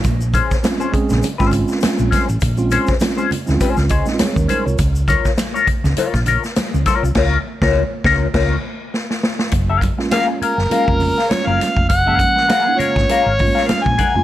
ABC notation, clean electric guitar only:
X:1
M:4/4
L:1/16
Q:"Swing 16ths" 1/4=101
K:Gblyd
V:1 name="Clean electric guitar"
z2 [DAc] z2 [DAc] z3 [DAc] z4 [DAc] z | z2 [DAc] z2 [DAc] z2 [DAc] z [DAc] z3 [DAc] z | z2 [FBd] z2 [FBd] z2 [FBd] z [FBd] z3 [FBd] z | [FBd]2 z [FBd]2 z [FBd]2 [FBd]2 z6 |
z [ABf] z2 [ABf] z [ABf] z [ABf] z2 [ABf] z [ABf] z2 | z [ABf] z2 [ABf] z [ABf] z [ABf] z2 [ABf] z2 [ABg] z |]